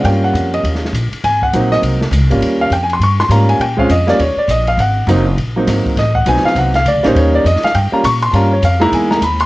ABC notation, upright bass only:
X:1
M:4/4
L:1/8
Q:"Swing" 1/4=203
K:Ebmix
V:1 name="Upright bass" clef=bass
G,,2 F,,2 E,,2 B,,, z | A,,,2 B,,,2 C,,2 (3D,, C,, A,,, | E,,2 F,,2 G,,2 A,,2 | B,,2 F,,2 E,, z B,,,2 |
A,,,2 _G,,,2 B,,,2 A,,, z | =A,,,2 _C,, z =C,,2 (3=D,, C,, A,,, | E,,2 F,, z G,, z B,,2 | G,,2 F,,2 =E,,2 ^D,,2 |]